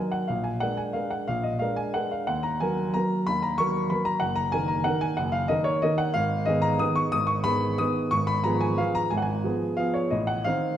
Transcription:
grand piano
Already playing: F#3 D#4 A#4 G#5
0.12 F#5
0.28 A#1 F5
0.44 G#5
0.60 G#3 D4 A#4 F#5
0.77 G#5
0.93 G#3 D4 A#4 F5
1.10 F#5
1.28 A#1 F5
1.43 D#5
1.59 G#3 D4 A#4 F5
1.76 G#5
1.94 G#3 D4 A#4 F#5
2.11 F5
2.27 D#2 F#5
2.43 A#5
2.60 F#3 A#3 A#4 G#5
2.94 F#3 A#3 A#4 A#5
3.27 D#2 B5
3.42 A#5
3.58 F#3 A#3 A#4 C#6
3.90 F#3 A#3 A#4 B5
4.05 A#5
4.20 F#1 F#5
4.36 A#5
4.52 D#3 A#3 A#4 G#5
4.68 A#5
4.84 D#3 A#3 A#4 F#5
5.01 G#5
5.17 F#1 F#5
5.32 F5
5.48 D#3 A#3 A#4 D#5
5.64 C#5
5.82 D#3 A#3 A#4 D#5
5.98 F#5
6.14 G#1 F5
6.46 D#3 B3 G#4 D#5
6.62 A#5
6.79 D#3 B3 G#4 D#6
6.96 C#6
7.12 G#1 D#6
7.27 C#6
7.44 D#3 B3 G#4 B5
7.78 D#3 B3 G#4 D#6
8.11 G#1 C#6
8.27 B5
8.44 F3 B3 G#4 A#5
8.60 G#5
8.78 F3 B3 G#4 F5
8.95 A#5
9.10 G#1 G#5
9.17 F#5
9.22 G#5
9.44 F3 B3 G#4
9.77 F3 B3 G#4 F5
9.94 C#5
10.10 A1 D#5
10.27 F#5
10.44 D#3 C4 D#4 F5

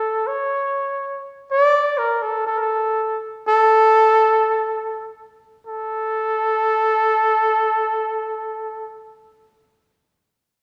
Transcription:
muted trumpet
Already playing: A4
0.27 C#5
1.51 D5
1.98 A#4
2.22 A4
2.47 A4
2.56 A4 A#4
3.47 A4
5.67 A4

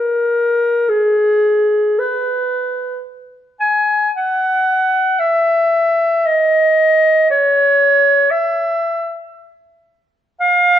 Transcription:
clarinet
Already playing: A#4
0.89 G#4
1.99 B4
3.60 G#5
4.16 F#5
5.19 E5
6.26 D#5
7.30 C#5
8.31 E5
10.40 F5

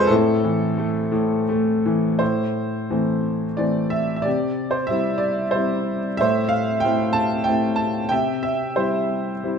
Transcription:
grand piano
Already playing: F2 C3 F3 G#3 C4 F4 G#4 A4 B4 C5
0.07 A2 C4 E4 A4
0.44 E3
0.78 A3
1.12 A2
1.49 A3
1.86 E3
2.19 A2 E4 C5
2.90 E3 A3 C4
3.57 E3 A3 C4 D5
3.90 E5
4.16 E5
4.22 C3 G4 D5
4.71 C5
4.87 G3 C4 E4 E5
5.18 D5
5.51 G3 C4 C5
5.55 E4
6.17 A2 C5 E5
6.49 F5
6.80 G5
6.84 A3 C4 E4
7.13 A5
7.44 A3 C4 G5
7.48 E4
7.76 A5
8.09 C3 E5 G5
8.43 E5
8.76 G3 C4 E4 C5
9.44 G3 C4 E4

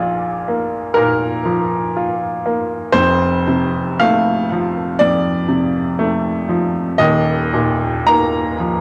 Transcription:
upright piano
Already playing: A#1 A#2 F3 D5
0.00 F4
0.48 A#3
0.94 A#2 A#4 F5
0.99 A#5 F6
1.45 F3
1.96 F4
2.46 A#3
2.92 F1 F2 C5
3.48 C3
4.00 A3 F5
4.52 F3
4.99 F2 D5
5.48 C3
5.99 A3
6.49 F3
6.98 D#1 D#2 D#5
7.54 A#2
8.07 A#3 A#5
8.60 F3

